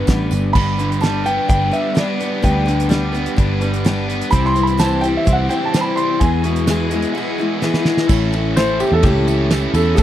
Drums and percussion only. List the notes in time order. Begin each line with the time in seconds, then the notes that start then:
0.07 kick, snare, closed hi-hat, tambourine
0.31 closed hi-hat, tambourine
0.55 kick, crash
0.79 closed hi-hat
0.92 closed hi-hat
1.03 snare, closed hi-hat
1.26 closed hi-hat
1.49 kick, closed hi-hat
1.73 closed hi-hat
1.97 snare, closed hi-hat
2.21 closed hi-hat
2.44 kick, closed hi-hat
2.68 closed hi-hat
2.80 closed hi-hat
2.91 snare, closed hi-hat
3.15 closed hi-hat
3.26 closed hi-hat
3.38 kick, closed hi-hat
3.61 closed hi-hat
3.74 closed hi-hat
3.86 snare, closed hi-hat
4.10 closed hi-hat
4.21 closed hi-hat
4.33 kick, closed hi-hat
4.45 snare
4.56 closed hi-hat
4.67 closed hi-hat
4.79 snare, closed hi-hat, tambourine
5.04 closed hi-hat
5.27 kick, closed hi-hat
5.51 closed hi-hat
5.74 snare, closed hi-hat, tambourine
5.97 closed hi-hat
6.21 kick, closed hi-hat
6.44 closed hi-hat
6.56 closed hi-hat
6.67 snare, closed hi-hat, tambourine
6.91 closed hi-hat
7.02 closed hi-hat
7.62 snare
7.74 snare
7.85 snare
7.97 snare
8.09 kick, crash, tambourine
8.33 ride
8.57 snare, ride, tambourine
8.80 ride, tambourine
9.03 kick, ride
9.28 ride, tambourine
9.50 snare, ride, tambourine
9.74 ride, tambourine
9.97 kick, ride, tambourine